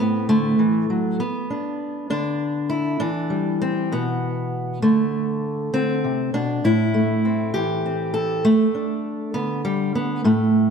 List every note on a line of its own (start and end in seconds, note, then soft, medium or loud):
0.00 1.19 A2 medium
0.00 0.29 B3 medium
0.00 0.60 C4 medium
0.29 0.59 D3 medium
0.29 1.19 A3 medium
0.59 0.89 E3 medium
0.90 1.20 F#3 medium
1.20 2.71 B3 medium
1.50 2.10 D4 medium
2.10 3.00 D3 medium
2.10 2.99 D4 medium
2.70 3.00 E4 medium
3.00 4.79 E3 medium
3.00 3.61 D4 medium
3.30 3.92 G3 medium
3.62 3.92 C4 medium
3.92 4.79 B2 medium
3.92 4.82 B3 medium
4.82 5.73 D3 medium
4.82 6.34 A3 medium
5.74 6.04 D3 medium
5.74 6.34 C4 medium
6.04 6.34 C3 soft
6.34 6.64 B2 medium
6.34 6.64 D4 medium
6.64 8.45 A2 medium
6.64 7.53 E4 medium
6.94 8.41 A3 medium
7.25 7.84 C4 soft
7.54 8.41 E3 medium
7.54 8.45 G4 medium
7.86 8.45 C4 soft
8.14 8.45 A4 medium
8.45 9.34 A3 medium
8.75 10.21 D4 medium
9.34 10.25 D3 medium
9.34 9.64 B3 medium
9.65 9.95 G3 medium
9.95 10.25 B3 medium
10.24 10.70 A2 medium
10.24 10.70 A3 medium